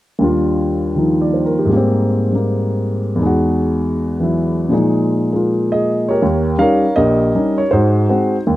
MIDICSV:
0, 0, Header, 1, 2, 480
1, 0, Start_track
1, 0, Key_signature, -3, "major"
1, 0, Tempo, 375235
1, 267, Time_signature, 4, 2, 24, 8
1, 10956, End_track
2, 0, Start_track
2, 0, Title_t, "Grand piano"
2, 0, Program_c, 0, 0
2, 240, Note_on_c, 0, 39, 47
2, 263, Note_on_c, 0, 62, 43
2, 283, Note_on_c, 0, 55, 43
2, 308, Note_on_c, 0, 65, 51
2, 1220, Note_on_c, 0, 51, 38
2, 1242, Note_on_c, 0, 53, 33
2, 1260, Note_on_c, 0, 63, 38
2, 1555, Note_on_c, 0, 74, 39
2, 1709, Note_on_c, 0, 72, 36
2, 1800, Note_off_c, 0, 74, 0
2, 1868, Note_on_c, 0, 70, 41
2, 2005, Note_off_c, 0, 72, 0
2, 2034, Note_on_c, 0, 67, 43
2, 2114, Note_on_c, 0, 44, 50
2, 2116, Note_off_c, 0, 70, 0
2, 2142, Note_off_c, 0, 55, 0
2, 2161, Note_on_c, 0, 55, 43
2, 2176, Note_off_c, 0, 39, 0
2, 2185, Note_off_c, 0, 51, 0
2, 2187, Note_off_c, 0, 62, 0
2, 2196, Note_off_c, 0, 53, 0
2, 2205, Note_off_c, 0, 63, 0
2, 2210, Note_off_c, 0, 65, 0
2, 2210, Note_on_c, 0, 58, 44
2, 2256, Note_on_c, 0, 60, 55
2, 2279, Note_off_c, 0, 67, 0
2, 2949, Note_off_c, 0, 55, 0
2, 2968, Note_on_c, 0, 55, 38
2, 2990, Note_off_c, 0, 58, 0
2, 3009, Note_on_c, 0, 58, 38
2, 4036, Note_on_c, 0, 40, 49
2, 4073, Note_off_c, 0, 44, 0
2, 4078, Note_on_c, 0, 63, 45
2, 4100, Note_off_c, 0, 55, 0
2, 4120, Note_off_c, 0, 58, 0
2, 4128, Note_on_c, 0, 56, 48
2, 4144, Note_off_c, 0, 60, 0
2, 4174, Note_on_c, 0, 66, 58
2, 5370, Note_on_c, 0, 52, 37
2, 5388, Note_on_c, 0, 54, 32
2, 5406, Note_on_c, 0, 64, 42
2, 5994, Note_off_c, 0, 40, 0
2, 5998, Note_on_c, 0, 46, 51
2, 6015, Note_off_c, 0, 63, 0
2, 6018, Note_off_c, 0, 56, 0
2, 6018, Note_on_c, 0, 53, 44
2, 6021, Note_off_c, 0, 52, 0
2, 6031, Note_off_c, 0, 54, 0
2, 6037, Note_on_c, 0, 56, 46
2, 6040, Note_off_c, 0, 64, 0
2, 6058, Note_on_c, 0, 63, 55
2, 6063, Note_off_c, 0, 66, 0
2, 6796, Note_off_c, 0, 56, 0
2, 6815, Note_on_c, 0, 56, 36
2, 6833, Note_on_c, 0, 58, 33
2, 6852, Note_on_c, 0, 65, 38
2, 7315, Note_on_c, 0, 75, 69
2, 7343, Note_on_c, 0, 68, 51
2, 7784, Note_on_c, 0, 73, 60
2, 7806, Note_off_c, 0, 75, 0
2, 7809, Note_on_c, 0, 70, 47
2, 7812, Note_on_c, 0, 67, 44
2, 7924, Note_off_c, 0, 68, 0
2, 7934, Note_off_c, 0, 46, 0
2, 7944, Note_off_c, 0, 53, 0
2, 7944, Note_off_c, 0, 56, 0
2, 7953, Note_off_c, 0, 58, 0
2, 7960, Note_on_c, 0, 39, 65
2, 7962, Note_off_c, 0, 65, 0
2, 7964, Note_off_c, 0, 63, 0
2, 8233, Note_off_c, 0, 73, 0
2, 8371, Note_off_c, 0, 39, 0
2, 8419, Note_on_c, 0, 55, 48
2, 8425, Note_on_c, 0, 61, 43
2, 8427, Note_on_c, 0, 63, 55
2, 8429, Note_on_c, 0, 77, 80
2, 8438, Note_off_c, 0, 70, 0
2, 8458, Note_on_c, 0, 70, 58
2, 8461, Note_on_c, 0, 73, 57
2, 8708, Note_off_c, 0, 67, 0
2, 8759, Note_off_c, 0, 55, 0
2, 8762, Note_off_c, 0, 61, 0
2, 8763, Note_off_c, 0, 63, 0
2, 8900, Note_on_c, 0, 75, 77
2, 8910, Note_off_c, 0, 70, 0
2, 8917, Note_on_c, 0, 34, 61
2, 8924, Note_off_c, 0, 77, 0
2, 8929, Note_on_c, 0, 70, 51
2, 8932, Note_on_c, 0, 67, 52
2, 9329, Note_off_c, 0, 34, 0
2, 9353, Note_off_c, 0, 73, 0
2, 9398, Note_on_c, 0, 55, 48
2, 9404, Note_on_c, 0, 61, 46
2, 9411, Note_on_c, 0, 63, 49
2, 9693, Note_on_c, 0, 73, 65
2, 9726, Note_off_c, 0, 75, 0
2, 9728, Note_off_c, 0, 55, 0
2, 9731, Note_off_c, 0, 61, 0
2, 9734, Note_off_c, 0, 63, 0
2, 9828, Note_off_c, 0, 70, 0
2, 9829, Note_off_c, 0, 67, 0
2, 9850, Note_off_c, 0, 73, 0
2, 9861, Note_on_c, 0, 72, 72
2, 9881, Note_on_c, 0, 44, 66
2, 9886, Note_on_c, 0, 63, 58
2, 9893, Note_on_c, 0, 66, 54
2, 10291, Note_off_c, 0, 44, 0
2, 10344, Note_off_c, 0, 66, 0
2, 10348, Note_on_c, 0, 56, 47
2, 10354, Note_on_c, 0, 60, 48
2, 10363, Note_on_c, 0, 66, 56
2, 10682, Note_off_c, 0, 56, 0
2, 10685, Note_off_c, 0, 60, 0
2, 10690, Note_off_c, 0, 66, 0
2, 10773, Note_off_c, 0, 72, 0
2, 10785, Note_off_c, 0, 63, 0
2, 10833, Note_on_c, 0, 39, 64
2, 10956, Note_off_c, 0, 39, 0
2, 10956, End_track
0, 0, End_of_file